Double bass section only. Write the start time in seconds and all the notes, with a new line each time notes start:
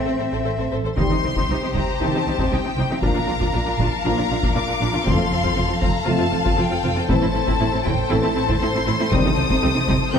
0.06 A1
0.20 A1
0.33 A1
0.46 A1
0.58 A1
0.71 A1
0.84 A1
0.98 C2
1.23 C2
1.49 C2
1.75 C2
2.01 C2
2.26 C2
2.51 C2
2.77 C2
3.02 A#1
3.28 A#1
3.54 A#1
3.79 A#1
4.05 A#1
4.30 A#1
4.56 A#1
4.82 A#1
5.07 F1
5.32 F1
5.58 F1
5.83 F1
6.08 F1
6.33 F1
6.58 F1
6.84 F1
7.09 A1
7.34 A1
7.60 A1
7.85 A1
8.11 A1
8.37 A1
8.61 A1
8.87 A1
9.12 C2
9.38 C2
9.64 C2
9.88 C2
10.14 C2